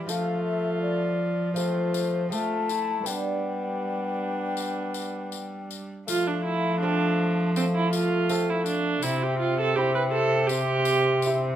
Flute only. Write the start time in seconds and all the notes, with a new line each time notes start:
0.09 F5
0.44 E5
0.82 D5
1.55 C5
2.31 A5
3.06 G5
6.06 F5
7.54 F5
9.02 E5
9.77 E5
10.50 E5